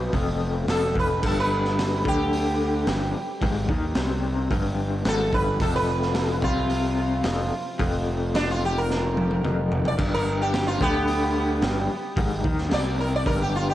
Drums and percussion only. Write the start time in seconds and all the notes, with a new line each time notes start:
0.13 kick, open hi-hat
0.68 snare, open hi-hat
0.96 kick
1.23 kick, crash
1.65 snare
1.79 snare, open hi-hat
2.05 kick
2.33 open hi-hat
2.87 snare, open hi-hat
3.42 kick, open hi-hat
3.69 kick
3.95 snare, open hi-hat
4.51 kick, open hi-hat
5.05 snare, open hi-hat
5.33 kick
5.60 kick, open hi-hat
6.02 snare
6.14 snare, open hi-hat
6.42 kick
6.70 open hi-hat
7.24 snare, open hi-hat
7.79 kick, open hi-hat
8.35 snare, open hi-hat
8.90 snare
9.17 high tom
9.31 high tom
9.44 mid tom
9.72 floor tom
9.85 floor tom
9.98 kick, crash
10.53 snare, open hi-hat
10.81 kick
11.08 open hi-hat
11.62 snare, open hi-hat
12.17 kick, open hi-hat
12.44 kick
12.58 snare
12.71 snare, open hi-hat
13.26 kick, open hi-hat